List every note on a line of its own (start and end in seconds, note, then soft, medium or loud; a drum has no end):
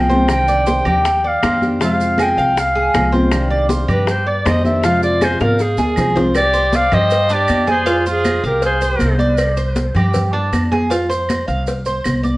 0.00 0.80 C2 medium
0.00 0.10 C4 medium
0.00 0.30 G5 medium
0.10 0.29 F3 medium
0.10 0.29 G#3 medium
0.10 0.29 C4 medium
0.10 0.28 F4 medium
0.10 0.47 C5 medium
0.10 high bongo soft
0.10 high conga medium
0.10 maracas soft
0.28 1.04 C3 medium
0.28 1.04 D#3 medium
0.28 1.04 G3 medium
0.28 1.04 D4 medium
0.28 1.04 G4 medium
0.28 0.84 G5 medium
0.28 high bongo medium
0.28 high conga soft
0.28 claves medium
0.28 maracas medium
0.48 0.66 D5 medium
0.48 high conga soft
0.48 maracas medium
0.67 0.85 C5 medium
0.67 high bongo medium
0.67 high conga loud
0.67 maracas medium
0.85 1.39 D#2 medium
0.85 1.22 G4 medium
0.85 1.29 G5 medium
0.85 low conga medium
0.85 claves medium
0.85 maracas soft
1.05 muted steel-string acoustic guitar stroke medium
1.05 high bongo medium
1.05 high conga soft
1.05 maracas medium
1.24 1.43 D5 medium
1.24 1.67 F5 medium
1.24 high conga soft
1.43 2.32 F2 medium
1.43 1.61 D#3 soft
1.43 1.61 G3 medium
1.43 1.62 D4 medium
1.43 1.61 G4 medium
1.43 1.80 C5 medium
1.43 high bongo medium
1.43 low bongo medium
1.43 high conga medium
1.43 claves medium
1.43 maracas medium
1.62 1.80 D#3 medium
1.62 1.81 G3 medium
1.62 1.80 D4 medium
1.62 1.80 G4 medium
1.62 high conga medium
1.62 maracas soft
1.80 2.55 C3 medium
1.80 2.55 F3 medium
1.80 2.55 G#3 medium
1.80 2.56 C4 medium
1.80 2.18 F4 medium
1.80 2.55 F4 medium
1.80 2.24 F5 medium
1.80 high bongo medium
1.80 high conga soft
1.80 maracas medium
1.99 high bongo soft
1.99 high conga soft
1.99 maracas medium
2.18 2.37 G#4 medium
2.18 high bongo medium
2.18 high conga medium
2.18 claves medium
2.18 maracas medium
2.22 2.61 G5 loud
2.37 2.90 C2 medium
2.37 2.74 F5 medium
2.37 high conga soft
2.37 maracas soft
2.56 3.15 F5 medium
2.56 muted steel-string acoustic guitar stroke medium
2.56 high bongo medium
2.56 high conga soft
2.56 maracas medium
2.76 3.12 G#4 medium
2.76 high bongo soft
2.76 high conga soft
2.94 3.83 C2 medium
2.94 3.12 F3 soft
2.94 3.13 G#3 medium
2.94 3.12 C4 medium
2.94 3.12 F4 medium
2.94 high bongo medium
2.94 low bongo medium
2.94 high conga medium
2.94 claves medium
2.94 maracas medium
3.13 3.32 F3 medium
3.13 3.32 G#3 medium
3.13 3.32 C4 medium
3.13 3.31 F4 medium
3.13 3.50 C5 medium
3.13 high bongo soft
3.13 high conga medium
3.13 maracas soft
3.32 4.06 C3 medium
3.32 4.07 D#3 medium
3.32 4.07 G3 medium
3.32 4.07 D4 medium
3.32 4.07 G4 medium
3.32 high bongo medium
3.32 high conga soft
3.32 claves medium
3.32 maracas medium
3.51 3.69 D5 medium
3.51 high conga soft
3.69 3.88 C5 medium
3.69 high bongo medium
3.69 high conga loud
3.69 maracas medium
3.89 4.42 G2 medium
3.89 4.26 G4 medium
3.89 4.13 B4 medium
3.89 low conga medium
3.89 claves medium
3.89 maracas soft
4.08 4.30 C5 medium
4.08 muted steel-string acoustic guitar stroke medium
4.08 high bongo medium
4.08 high conga soft
4.08 maracas medium
4.27 4.45 D5 medium
4.27 4.50 D5 medium
4.27 high conga soft
4.45 5.35 F2 medium
4.45 4.64 D#3 medium
4.45 4.64 G3 medium
4.45 4.64 D4 medium
4.45 4.63 G4 medium
4.45 4.82 C5 medium
4.45 4.64 D#5 medium
4.45 high bongo medium
4.45 low bongo medium
4.45 high conga medium
4.45 claves medium
4.45 maracas medium
4.64 4.83 D#3 medium
4.64 4.83 G3 medium
4.64 4.83 D4 medium
4.64 4.83 G4 medium
4.64 4.86 E5 medium
4.64 high conga medium
4.64 maracas soft
4.83 5.58 C3 medium
4.83 5.58 F3 medium
4.83 5.58 G#3 medium
4.83 5.58 C4 medium
4.83 5.20 F4 medium
4.83 5.58 F4 medium
4.83 5.03 F5 loud
4.83 high bongo medium
4.83 high conga soft
4.83 maracas medium
5.03 5.26 D5 loud
5.03 high bongo soft
5.03 high conga soft
5.03 maracas medium
5.21 5.40 G#4 medium
5.21 5.41 C5 medium
5.21 high bongo medium
5.21 high conga medium
5.21 claves medium
5.21 maracas medium
5.40 5.76 G#2 medium
5.40 5.63 A#4 medium
5.40 5.77 F5 medium
5.40 high bongo medium
5.40 high conga medium
5.40 maracas soft
5.59 6.27 G#4 medium
5.59 muted steel-string acoustic guitar stroke medium
5.59 high bongo medium
5.59 maracas medium
5.77 5.96 D2 medium
5.77 6.15 G#4 medium
5.77 high bongo medium
5.77 high conga medium
5.77 maracas medium
5.96 6.86 C2 medium
5.96 6.15 F3 soft
5.96 6.15 G#3 medium
5.96 6.15 C4 medium
5.96 6.14 F4 medium
5.96 low bongo medium
5.96 low conga loud
5.96 claves medium
5.96 maracas medium
6.15 6.35 F3 medium
6.15 6.34 G#3 medium
6.15 6.34 C4 medium
6.15 6.34 F4 medium
6.15 6.34 C5 medium
6.15 low bongo medium
6.15 low conga medium
6.15 maracas soft
6.35 6.77 G4 medium
6.35 6.77 D5 loud
6.35 cowbell loud
6.35 high conga soft
6.35 claves medium
6.35 maracas medium
6.54 6.91 C5 medium
6.54 high conga soft
6.54 maracas medium
6.73 6.96 D5 medium
6.73 6.96 F5 loud
6.73 cowbell medium
6.73 high conga loud
6.73 maracas medium
6.92 7.45 G2 medium
6.92 7.29 G4 medium
6.92 7.35 C5 medium
6.92 7.35 D#5 loud
6.92 cowbell medium
6.92 low conga medium
6.92 claves medium
6.92 maracas soft
7.11 cowbell loud
7.11 high conga soft
7.11 maracas medium
7.30 7.67 D4 medium
7.30 7.70 G4 medium
7.30 7.69 D5 loud
7.30 high conga soft
7.30 maracas medium
7.48 8.38 F2 medium
7.48 cowbell medium
7.48 high conga medium
7.48 claves medium
7.48 maracas medium
7.67 7.86 G#4 medium
7.67 8.05 G#4 medium
7.67 8.05 C5 medium
7.67 cowbell medium
7.67 high conga medium
7.67 maracas soft
7.86 8.05 F4 medium
7.86 cowbell loud
7.86 high conga soft
7.86 maracas medium
8.06 8.42 F4 medium
8.06 8.43 C5 medium
8.06 high conga soft
8.06 maracas medium
8.10 8.44 G#4 loud
8.25 cowbell medium
8.25 high conga loud
8.25 claves medium
8.25 maracas medium
8.44 8.97 C2 medium
8.44 8.63 G4 medium
8.44 8.63 A#4 medium
8.44 8.81 F5 medium
8.44 high conga soft
8.44 maracas soft
8.62 9.17 G#4 medium
8.62 9.18 C5 medium
8.62 cowbell loud
8.62 high conga soft
8.62 maracas medium
8.81 9.19 C5 medium
8.81 high conga soft
8.81 maracas medium
8.99 9.90 C2 medium
8.99 cowbell medium
8.99 high conga medium
8.99 claves medium
8.99 maracas medium
9.19 9.56 D5 medium
9.19 high conga medium
9.19 maracas soft
9.38 cowbell loud
9.38 claves medium
9.38 maracas medium
9.57 9.94 C5 medium
9.57 high conga soft
9.57 maracas medium
9.76 cowbell medium
9.76 high conga loud
9.76 maracas medium
9.95 10.48 G2 medium
9.95 10.33 G4 medium
9.95 cowbell medium
9.95 low conga medium
9.95 claves medium
9.95 maracas soft
10.14 cowbell loud
10.14 high conga soft
10.14 low conga medium
10.14 maracas medium
10.33 10.70 D4 medium
10.33 high conga soft
10.52 11.42 F2 medium
10.52 cowbell medium
10.52 high conga medium
10.52 claves medium
10.52 maracas medium
10.71 10.90 G#4 medium
10.71 cowbell medium
10.71 high conga medium
10.71 maracas soft
10.90 11.09 F4 medium
10.90 cowbell loud
10.90 high conga soft
10.90 maracas medium
11.09 11.46 C5 medium
11.09 high conga soft
11.09 maracas medium
11.29 cowbell medium
11.29 high conga loud
11.29 claves medium
11.29 maracas medium
11.48 12.01 C2 medium
11.48 11.85 F5 medium
11.48 high conga soft
11.48 maracas soft
11.67 cowbell loud
11.67 high conga soft
11.67 maracas medium
11.85 12.23 C5 medium
11.85 high conga soft
11.85 maracas medium
12.04 12.37 C2 medium
12.04 cowbell medium
12.04 high conga medium
12.04 claves medium
12.04 maracas medium
12.23 12.37 D5 medium
12.23 high conga medium
12.23 maracas soft